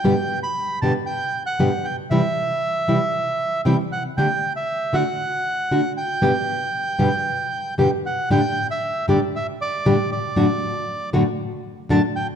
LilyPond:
<<
  \new Staff \with { instrumentName = "Bandoneon" } { \time 4/4 \key g \major \tempo 4 = 116 g''8. b''8. a''8 g''8. fis''8. g''8 | e''2. g''8 fis''8 | g''8. e''8. fis''2 g''8~ | g''2. g''8 fis''8 |
g''8. e''8. d''8 e''8 d''4 d''8~ | d''4. r4. a''8 g''8 | }
  \new Staff \with { instrumentName = "Nylon-string guitar" } { \clef bass \time 4/4 \key g \major <g, b, d g b g'>8 r4 <g, b, d g b g'>8 r4 <g, b, d g b g'>8 r8 | <c e g c' e'>8 r4 <c e g c' e'>8 r4 <c e g c' e'>8 r8 | <d a d' g'>8 r4 <d a d' fis'>8 r4 <d a d' fis'>8 r8 | <g, b, d g b g'>8 r4 <g, b, d g b g'>8 r4 <g, b, d g b g'>8 r8 |
<g, a, d g d' g'>8 r4 <g, a, d g d' g'>8 r4 <g, a, d g d' g'>8 r8 | <fis, a, d a d' fis'>8 r4 <fis, a, d a d' fis'>8 r4 <fis, a, d a d' fis'>8 r8 | }
>>